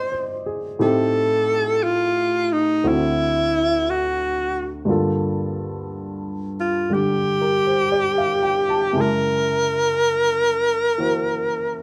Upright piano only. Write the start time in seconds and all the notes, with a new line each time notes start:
Already playing: G#2 G#3 A#3 C4 D5 D#5 G5
0.12 C5
0.46 G#4
0.79 A2 A3 C4 D#4 G4
2.84 D2 D3 C4 E4 F#4
4.85 G2 D3 A#3 F4
4.91 A4
6.89 D3 G3 D4 G4
7.41 A#4
7.67 C5
7.92 D5
8.18 F5
8.43 G5
8.69 A5
8.93 F#2 C#3 G#3 E4
8.97 A#4
10.98 E3 A#3 F#4 C5